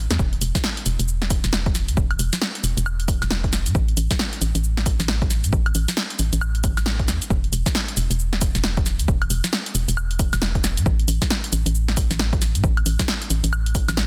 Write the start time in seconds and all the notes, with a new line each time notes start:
0.11 E2, snare, closed hi-hat, cabasa
0.19 E1, kick, cabasa
0.33 closed hi-hat
0.41 E1, open hi-hat, cabasa
0.55 kick, snare, closed hi-hat, cabasa
0.64 snare, cabasa
0.77 closed hi-hat
0.86 E1, open hi-hat, cabasa
0.99 E1, closed hi-hat, cabasa
1.08 cabasa
1.22 snare, closed hi-hat
1.30 kick, open hi-hat, cabasa
1.44 E1, snare, closed hi-hat, cabasa
1.53 snare, cabasa
1.66 kick, closed hi-hat
1.75 snare, open hi-hat, cabasa
1.88 E2, closed hi-hat, cabasa
1.97 E1, kick, cabasa
2.11 closed hi-hat, high woodblock
2.19 E1, open hi-hat, cabasa
2.33 snare, closed hi-hat, cabasa
2.42 snare, cabasa
2.55 closed hi-hat
2.64 E1, open hi-hat, cabasa
2.77 E1, closed hi-hat, cabasa
2.86 cabasa, high woodblock
3.00 closed hi-hat
3.08 kick, open hi-hat, cabasa
3.22 E1, snare, closed hi-hat, cabasa, high woodblock
3.31 snare, cabasa
3.44 kick, closed hi-hat
3.53 snare, open hi-hat, cabasa
3.66 A2, closed hi-hat, cabasa
3.75 A1, kick, cabasa
3.88 closed hi-hat
3.97 A1, open hi-hat, cabasa
4.11 kick, snare, closed hi-hat, cabasa
4.19 snare, cabasa
4.33 closed hi-hat
4.41 A1, open hi-hat, cabasa
4.55 A1, closed hi-hat, cabasa
4.64 cabasa
4.77 snare, closed hi-hat
4.86 kick, open hi-hat, cabasa
4.99 A1, snare, closed hi-hat, cabasa
5.08 snare, cabasa
5.22 kick, closed hi-hat
5.30 snare, open hi-hat, cabasa
5.44 A2, closed hi-hat, cabasa
5.53 A1, kick, cabasa
5.66 closed hi-hat, high woodblock
5.75 A1, open hi-hat, cabasa
5.88 snare, closed hi-hat, cabasa
5.97 snare, cabasa
6.10 closed hi-hat
6.19 A1, open hi-hat, cabasa
6.33 A1, closed hi-hat, cabasa
6.41 cabasa, high woodblock
6.55 closed hi-hat
6.64 G1, kick, open hi-hat, cabasa
6.77 A1, snare, closed hi-hat, cabasa, high woodblock
6.86 snare, cabasa
7.00 kick, closed hi-hat
7.08 E2, snare, open hi-hat, cabasa
7.22 closed hi-hat, cabasa
7.30 E1, kick, cabasa
7.44 closed hi-hat
7.52 E1, open hi-hat, cabasa
7.66 kick, snare, closed hi-hat, cabasa
7.75 snare, cabasa
7.88 closed hi-hat
7.97 E1, open hi-hat, cabasa
8.10 E1, closed hi-hat, cabasa
8.19 cabasa
8.33 snare, closed hi-hat
8.41 kick, open hi-hat, cabasa
8.55 E1, snare, closed hi-hat, cabasa
8.64 snare, cabasa
8.77 kick, closed hi-hat
8.86 snare, open hi-hat, cabasa
8.99 E2, closed hi-hat, cabasa
9.08 E1, kick, cabasa
9.22 closed hi-hat, high woodblock
9.30 E1, open hi-hat, cabasa
9.44 snare, closed hi-hat, cabasa
9.53 snare, cabasa
9.66 closed hi-hat
9.75 E1, open hi-hat, cabasa
9.88 E1, closed hi-hat, cabasa
9.97 cabasa, high woodblock
10.11 closed hi-hat
10.19 kick, open hi-hat, cabasa
10.33 E1, snare, closed hi-hat, cabasa, high woodblock
10.42 snare, cabasa
10.55 kick, closed hi-hat
10.64 snare, open hi-hat, cabasa
10.77 A2, closed hi-hat, cabasa
10.86 A1, kick, cabasa
10.99 closed hi-hat
11.08 A1, open hi-hat, cabasa
11.22 kick, snare, closed hi-hat, cabasa
11.30 snare, cabasa
11.44 closed hi-hat
11.53 A1, open hi-hat, cabasa
11.66 A1, closed hi-hat, cabasa
11.75 cabasa
11.88 snare, closed hi-hat
11.97 kick, open hi-hat, cabasa
12.11 A1, snare, closed hi-hat, cabasa
12.19 snare, cabasa
12.33 kick, closed hi-hat
12.42 snare, open hi-hat, cabasa
12.55 A2, closed hi-hat, cabasa
12.64 A1, kick, cabasa
12.77 closed hi-hat, high woodblock
12.86 A1, open hi-hat, cabasa
12.99 kick, snare, closed hi-hat, cabasa
13.08 snare, cabasa
13.22 closed hi-hat
13.30 A1, open hi-hat, cabasa
13.44 A1, closed hi-hat, cabasa
13.53 cabasa, high woodblock
13.66 closed hi-hat
13.75 kick, open hi-hat, cabasa
13.88 A1, snare, closed hi-hat, cabasa, high woodblock
13.97 cross-stick, snare, cabasa